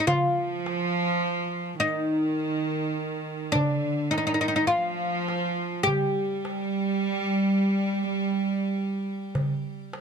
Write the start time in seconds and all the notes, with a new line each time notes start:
0.07 F3 F4, darbuka dum
0.66 darbuka tek
1.80 D#3 D#4
2.40 darbuka ka
3.52 D3 D4, darbuka dum
4.11 D#3 D#4, darbuka tek
4.18 D#4
4.27 D#4
4.34 D#4
4.41 D#4
4.48 D#4
4.56 D#4
4.67 F3 F4
5.28 darbuka tek
5.83 G3 G4, darbuka dum
6.45 darbuka tek
7.03 darbuka ka
7.61 darbuka ka
8.19 darbuka ka
8.78 darbuka ka
9.35 darbuka dum
9.93 darbuka tek